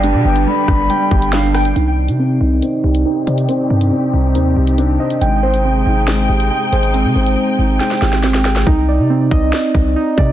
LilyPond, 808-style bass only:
\new Staff \with { instrumentName = "808-style bass" } { \clef bass \time 4/4 \key c \minor \tempo 4 = 139 g,,16 b,16 g,,8 r8 g,,8 r8 g,,4. | c,8. c8. c,8 r8 c,8 r8 c8 | r8 g,8 r8 c,8 ees,8 c,4 r8 | aes,,4. aes,,4 aes,,8 r8 aes,,8~ |
aes,,16 c16 aes,,8 r8 aes,,8 r8 aes,,4. | c,8. c8. c,8 r8 c,8 r8 c8 | }